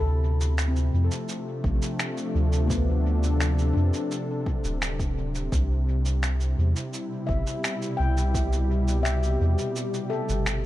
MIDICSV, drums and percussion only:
0, 0, Header, 1, 2, 480
1, 0, Start_track
1, 0, Tempo, 705882
1, 1836, Time_signature, 4, 2, 24, 8
1, 7247, End_track
2, 0, Start_track
2, 0, Title_t, "Drums"
2, 277, Note_on_c, 9, 69, 41
2, 345, Note_off_c, 9, 69, 0
2, 395, Note_on_c, 9, 26, 75
2, 395, Note_on_c, 9, 69, 48
2, 463, Note_off_c, 9, 26, 0
2, 463, Note_off_c, 9, 69, 0
2, 516, Note_on_c, 9, 69, 27
2, 584, Note_off_c, 9, 69, 0
2, 756, Note_on_c, 9, 69, 39
2, 824, Note_off_c, 9, 69, 0
2, 874, Note_on_c, 9, 69, 48
2, 942, Note_off_c, 9, 69, 0
2, 1116, Note_on_c, 9, 36, 98
2, 1184, Note_off_c, 9, 36, 0
2, 1237, Note_on_c, 9, 69, 39
2, 1305, Note_off_c, 9, 69, 0
2, 1357, Note_on_c, 9, 26, 75
2, 1357, Note_on_c, 9, 69, 48
2, 1425, Note_off_c, 9, 26, 0
2, 1425, Note_off_c, 9, 69, 0
2, 1477, Note_on_c, 9, 69, 27
2, 1545, Note_off_c, 9, 69, 0
2, 1718, Note_on_c, 9, 69, 37
2, 1786, Note_off_c, 9, 69, 0
2, 1836, Note_on_c, 9, 36, 103
2, 1836, Note_on_c, 9, 69, 44
2, 1904, Note_off_c, 9, 36, 0
2, 1904, Note_off_c, 9, 69, 0
2, 2198, Note_on_c, 9, 69, 39
2, 2266, Note_off_c, 9, 69, 0
2, 2315, Note_on_c, 9, 26, 75
2, 2315, Note_on_c, 9, 69, 48
2, 2383, Note_off_c, 9, 26, 0
2, 2383, Note_off_c, 9, 69, 0
2, 2437, Note_on_c, 9, 69, 27
2, 2505, Note_off_c, 9, 69, 0
2, 2676, Note_on_c, 9, 69, 38
2, 2744, Note_off_c, 9, 69, 0
2, 2796, Note_on_c, 9, 69, 47
2, 2864, Note_off_c, 9, 69, 0
2, 3035, Note_on_c, 9, 36, 97
2, 3103, Note_off_c, 9, 36, 0
2, 3157, Note_on_c, 9, 69, 38
2, 3225, Note_off_c, 9, 69, 0
2, 3276, Note_on_c, 9, 26, 73
2, 3276, Note_on_c, 9, 69, 47
2, 3344, Note_off_c, 9, 26, 0
2, 3344, Note_off_c, 9, 69, 0
2, 3396, Note_on_c, 9, 36, 94
2, 3398, Note_on_c, 9, 69, 26
2, 3464, Note_off_c, 9, 36, 0
2, 3466, Note_off_c, 9, 69, 0
2, 3638, Note_on_c, 9, 69, 37
2, 3706, Note_off_c, 9, 69, 0
2, 3755, Note_on_c, 9, 36, 110
2, 3757, Note_on_c, 9, 69, 48
2, 3823, Note_off_c, 9, 36, 0
2, 3825, Note_off_c, 9, 69, 0
2, 4117, Note_on_c, 9, 69, 42
2, 4185, Note_off_c, 9, 69, 0
2, 4236, Note_on_c, 9, 26, 75
2, 4236, Note_on_c, 9, 69, 51
2, 4304, Note_off_c, 9, 26, 0
2, 4304, Note_off_c, 9, 69, 0
2, 4356, Note_on_c, 9, 69, 28
2, 4424, Note_off_c, 9, 69, 0
2, 4597, Note_on_c, 9, 69, 40
2, 4665, Note_off_c, 9, 69, 0
2, 4715, Note_on_c, 9, 69, 48
2, 4783, Note_off_c, 9, 69, 0
2, 4955, Note_on_c, 9, 36, 90
2, 5023, Note_off_c, 9, 36, 0
2, 5077, Note_on_c, 9, 69, 39
2, 5145, Note_off_c, 9, 69, 0
2, 5196, Note_on_c, 9, 26, 71
2, 5196, Note_on_c, 9, 69, 48
2, 5264, Note_off_c, 9, 26, 0
2, 5264, Note_off_c, 9, 69, 0
2, 5317, Note_on_c, 9, 69, 28
2, 5385, Note_off_c, 9, 69, 0
2, 5557, Note_on_c, 9, 69, 38
2, 5625, Note_off_c, 9, 69, 0
2, 5675, Note_on_c, 9, 36, 105
2, 5677, Note_on_c, 9, 69, 50
2, 5743, Note_off_c, 9, 36, 0
2, 5745, Note_off_c, 9, 69, 0
2, 5797, Note_on_c, 9, 69, 29
2, 5865, Note_off_c, 9, 69, 0
2, 6037, Note_on_c, 9, 69, 41
2, 6105, Note_off_c, 9, 69, 0
2, 6155, Note_on_c, 9, 26, 75
2, 6155, Note_on_c, 9, 69, 54
2, 6223, Note_off_c, 9, 26, 0
2, 6223, Note_off_c, 9, 69, 0
2, 6278, Note_on_c, 9, 69, 29
2, 6346, Note_off_c, 9, 69, 0
2, 6517, Note_on_c, 9, 69, 40
2, 6585, Note_off_c, 9, 69, 0
2, 6636, Note_on_c, 9, 69, 51
2, 6704, Note_off_c, 9, 69, 0
2, 6758, Note_on_c, 9, 69, 29
2, 6826, Note_off_c, 9, 69, 0
2, 6997, Note_on_c, 9, 69, 41
2, 7065, Note_off_c, 9, 69, 0
2, 7115, Note_on_c, 9, 26, 73
2, 7115, Note_on_c, 9, 69, 51
2, 7183, Note_off_c, 9, 26, 0
2, 7183, Note_off_c, 9, 69, 0
2, 7247, End_track
0, 0, End_of_file